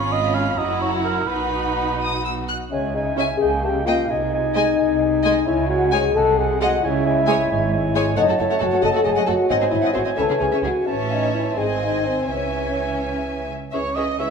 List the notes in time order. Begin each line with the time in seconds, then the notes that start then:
Already playing: G#1 G#2 C#4 F4 C#5 B5
0.12 D#5
0.24 C#4
0.35 F5
0.57 F#1 F#2 E4 F#4 D#5 A#5
0.82 C#5
1.05 A#4
1.28 B1 B2 D#4 F#4 B4 B5
2.01 D#6
2.25 E6
2.49 F#6
2.70 C#2 C#3 G#3 C#4 C#5 E5 G#5
2.94 G#3 D#4 D#5 E5 G#5
3.16 G#3 C#4 E4 E5 G#5
3.37 C#2 C#3 A#3 G#4 G5
3.41 D#5 G#5
3.63 A#3 G4 D#5 G5 A5
3.69 G5
3.84 A#3 F4 D#5 F5 G5
4.09 C2 C3 G#3 D#4 D#5 G#5
4.34 G#3 D#5 G#5
4.55 G#3 D#5 G#5
4.78 C2 C3 G#3 D#5 G#5
5.01 G#3 D#5 G#5
5.23 G#3 D#5 G#5
5.46 C#2 C#3 G#3 E4 C#5 E5 G#5
5.67 G#3 F#4 C#5 F#5 G#5
5.92 G#3 G#4 C#5 G#5
6.14 C2 C3 G#3 A4 D#5 F#5 A5
6.38 G#3 G#4 D#5 F#5 G#5
6.60 G#3 F#4 D#5 F#5
6.83 C#2 C#3 G#3 E4 C#5 F#5 G#5
6.87 E5
7.06 G#3 C#5 G#5
7.27 G#3 C#5 G#5
7.50 G#1 G#2 G#3 C#5 G#5
7.73 G#3 C#5 G#5
7.95 G#3 C#5 G#5
8.16 F#1 F#2 F#3 A3 D#4 C#5 D#5 F#5 A5
8.28 F#2 A3 F#4 A4
8.39 F#1 F#2 A3 E4 A4 C#5 F#5
8.43 E5
8.50 F#2 A3 C#5 F#5
8.60 F#1 F#2 A3 F#4 A4 G#5
8.65 F#5
8.70 F#2 A3 A4 C#5
8.82 F#1 F#2 A3 A4 D#5 F#5 A5
8.93 F#2 A3 F#4 A4
9.03 F#1 F#2 A3 G#4 A4 D#5 G#5
9.16 F#2 A3 D#5 F#5
9.27 F#1 F#2 A3 F#4 A4 F#5
9.49 G#1 G#2 C4 D#4 C5 D#5 F#5 G#5
9.61 G#2 C4 G#4 C5
9.70 G#1 G#2 C4 E4 D#5 E5
9.75 C5
9.82 G#2 C4 D#5 F#5
9.93 G#1 G#2 C4 F#4 G#4 C5 F#5
10.05 G#2 C4 C5 D#5
10.16 C#2 C#3 E3 C#4 A4 C#5 E5 B5
10.22 A5
10.29 C#3 C#4 E4 G#4
10.40 C#2 C#3 C#4 G#4 C#5 G#5
10.52 C#3 C#4 C#5 E5
10.63 C#2 C#3 C#4 E4 F#4 G#4 F#5
10.86 A1 A2 E3 C#4 C#5 E5 A5
11.09 D#4 F5
11.13 D#5
11.33 E4 E5
11.57 G#1 G#2 D#3 C4 G#4 C5 D#5 G#5
11.81 D#4 D#5 F5
12.05 C4 C5
12.27 C#2 C#3 E3 C#4 C#5 E5 G#5
13.72 C#2 C#3 E3 C#4 G#4 C#5 E5 C#6
13.95 E3 C#4 G#4 C#5 D#5 E5 C#6
14.19 E3 G#3 C#4 E4 G#4 C#5 E5 C#6